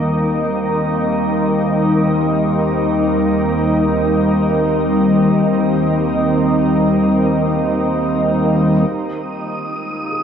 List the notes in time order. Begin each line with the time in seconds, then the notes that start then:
Already playing: D#2 D#3 G3 A#3 C4 D#4 A#4 D#5
8.91 D#3 A#3 D#4 G4 D#6
9.18 F4
9.35 G#3
9.47 C#4
10.11 G#4